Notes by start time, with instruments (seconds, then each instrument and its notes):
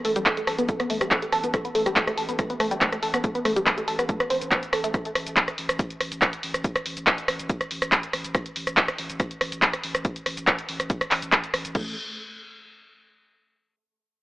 0.05 sub bass A1, synth arpeggio sound A3, open hi-hat
0.16 sub bass A1, synth arpeggio sound G3, closed hi-hat, shaker
0.26 synth arpeggio sound A3, kick, cross-stick, clap, closed hi-hat, shaker
0.37 synth arpeggio sound A3, closed hi-hat, shaker
0.47 sub bass A1, synth arpeggio sound A4, cross-stick, open hi-hat
0.58 sub bass A1, synth arpeggio sound B3, closed hi-hat, shaker
0.69 synth arpeggio sound A3, kick, closed hi-hat, shaker
0.80 synth arpeggio sound B3, cross-stick, closed hi-hat, shaker
0.90 sub bass A1, synth arpeggio sound A3, open hi-hat
1.01 sub bass A1, synth arpeggio sound G3, cross-stick, closed hi-hat, shaker
1.11 synth arpeggio sound A3, kick, clap, closed hi-hat, shaker
1.22 synth arpeggio sound A3, closed hi-hat, shaker
1.32 sub bass A1, synth arpeggio sound A4, cross-stick, open hi-hat
1.44 sub bass A1, synth arpeggio sound B3, closed hi-hat, shaker
1.54 synth arpeggio sound A3, kick, cross-stick, closed hi-hat, shaker
1.65 synth arpeggio sound B3, closed hi-hat, shaker
1.75 sub bass A1, synth arpeggio sound A3, open hi-hat
1.86 sub bass A1, synth arpeggio sound G3, cross-stick, closed hi-hat, shaker
1.96 synth arpeggio sound A3, kick, clap, closed hi-hat, shaker
2.07 synth arpeggio sound A3, cross-stick, closed hi-hat, shaker
2.17 sub bass A1, synth arpeggio sound A4, open hi-hat
2.29 sub bass A1, synth arpeggio sound B3, closed hi-hat, shaker
2.39 synth arpeggio sound A3, kick, cross-stick, closed hi-hat, shaker
2.50 synth arpeggio sound B3, closed hi-hat, shaker
2.60 sub bass A1, synth arpeggio sound A3, cross-stick, open hi-hat
2.71 sub bass A1, synth arpeggio sound G3, closed hi-hat, shaker
2.81 synth arpeggio sound A3, kick, clap, closed hi-hat, shaker
2.92 synth arpeggio sound A3, cross-stick, closed hi-hat, shaker
3.03 sub bass A1, synth arpeggio sound A4, open hi-hat
3.14 sub bass A1, synth arpeggio sound B3, cross-stick, closed hi-hat, shaker
3.24 synth arpeggio sound A3, kick, closed hi-hat, shaker
3.35 synth arpeggio sound B3, closed hi-hat, shaker
3.45 sub bass A1, synth arpeggio sound A3, cross-stick, open hi-hat
3.56 sub bass A1, synth arpeggio sound G3, closed hi-hat, shaker
3.66 synth arpeggio sound A3, kick, cross-stick, clap, closed hi-hat, shaker
3.78 synth arpeggio sound A3, closed hi-hat, shaker
3.88 sub bass A1, synth arpeggio sound A4, open hi-hat
3.99 sub bass A1, synth arpeggio sound B3, cross-stick, closed hi-hat, shaker
4.09 synth arpeggio sound A3, kick, closed hi-hat, shaker
4.20 synth arpeggio sound B3, cross-stick, closed hi-hat, shaker
4.30 sub bass A1, synth arpeggio sound C4, open hi-hat
4.41 sub bass A1, closed hi-hat, shaker
4.51 synth arpeggio sound B3, kick, cross-stick, clap, closed hi-hat, shaker
4.63 closed hi-hat, shaker
4.73 sub bass A1, synth arpeggio sound A4, cross-stick, open hi-hat
4.84 sub bass A1, synth arpeggio sound A3, closed hi-hat, shaker
4.94 kick, cross-stick, closed hi-hat, shaker
5.05 closed hi-hat, shaker
5.15 sub bass A1, cross-stick, open hi-hat
5.27 sub bass A1, closed hi-hat, shaker
5.37 kick, clap, closed hi-hat, shaker
5.48 cross-stick, closed hi-hat, shaker
5.58 sub bass A1, open hi-hat
5.69 sub bass A1, cross-stick, closed hi-hat, shaker
5.79 kick, closed hi-hat, shaker
5.90 closed hi-hat, shaker
6.01 sub bass A1, cross-stick, open hi-hat
6.12 sub bass A1, closed hi-hat, shaker
6.22 kick, cross-stick, clap, closed hi-hat, shaker
6.33 closed hi-hat, shaker
6.43 sub bass A1, open hi-hat
6.54 sub bass A1, cross-stick, closed hi-hat, shaker
6.64 kick, closed hi-hat, shaker
6.76 cross-stick, closed hi-hat, shaker
6.86 sub bass A1, open hi-hat
6.97 sub bass A1, closed hi-hat, shaker
7.07 kick, cross-stick, clap, closed hi-hat, shaker
7.18 closed hi-hat, shaker
7.28 sub bass A1, cross-stick, open hi-hat
7.39 sub bass A1, closed hi-hat, shaker
7.50 kick, closed hi-hat, shaker
7.61 cross-stick, closed hi-hat, shaker
7.71 sub bass A1, open hi-hat
7.82 sub bass A1, cross-stick, closed hi-hat, shaker
7.92 kick, clap, closed hi-hat, shaker
8.03 closed hi-hat, shaker
8.13 sub bass A1, cross-stick, open hi-hat
8.24 sub bass A1, closed hi-hat, shaker
8.35 kick, cross-stick, closed hi-hat, shaker
8.46 closed hi-hat, shaker
8.56 sub bass A1, open hi-hat
8.67 sub bass A1, cross-stick, closed hi-hat, shaker
8.77 kick, clap, closed hi-hat, shaker
8.88 cross-stick, closed hi-hat, shaker
8.98 sub bass A1, open hi-hat
9.10 sub bass A1, closed hi-hat, shaker
9.20 kick, cross-stick, closed hi-hat, shaker
9.31 closed hi-hat, shaker
9.41 sub bass A1, cross-stick, open hi-hat
9.52 sub bass A1, closed hi-hat, shaker
9.62 kick, clap, closed hi-hat, shaker
9.73 cross-stick, closed hi-hat, shaker
9.83 sub bass A1, open hi-hat
9.95 sub bass A1, cross-stick, closed hi-hat, shaker
10.05 kick, closed hi-hat, shaker
10.16 closed hi-hat, shaker
10.26 sub bass A1, cross-stick, open hi-hat
10.37 sub bass A1, closed hi-hat, shaker
10.47 kick, cross-stick, clap, closed hi-hat, shaker
10.59 closed hi-hat, shaker
10.69 sub bass A1, open hi-hat
10.80 sub bass A1, cross-stick, closed hi-hat, shaker
10.90 kick, closed hi-hat, shaker
11.01 cross-stick, closed hi-hat, shaker
11.11 sub bass A1, clap, open hi-hat
11.22 sub bass A1, closed hi-hat, shaker
11.32 kick, cross-stick, clap, closed hi-hat, shaker
11.44 closed hi-hat, shaker
11.54 sub bass A1, cross-stick, open hi-hat
11.65 sub bass A1, closed hi-hat, shaker
11.75 sub bass A1, synth arpeggio sound A3, kick, crash